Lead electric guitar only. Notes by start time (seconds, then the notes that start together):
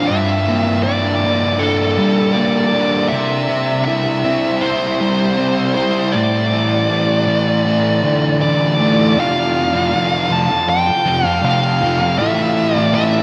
Already playing: F5
0.07 E5
0.83 D5
1.59 A4
2.33 D5
3.09 E5
3.85 E5
4.61 C5
5.74 C5
6.12 D5
8.42 D5
9.20 F5
10.32 A5
10.69 G5
11.26 F5
11.45 F5
12.19 E5
12.77 D5
12.95 E5